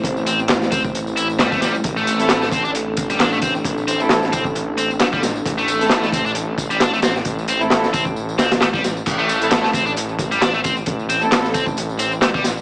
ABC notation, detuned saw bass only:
X:1
M:4/4
L:1/16
Q:"Swing 16ths" 1/4=133
K:Am
V:1 name="Detuned saw bass" clef=bass
A,,,16 | A,,,16 | A,,,16 | A,,,16 |
A,,,8- A,,,2 D,, A,,,4- A,,, | A,,,16 | A,,,16 |]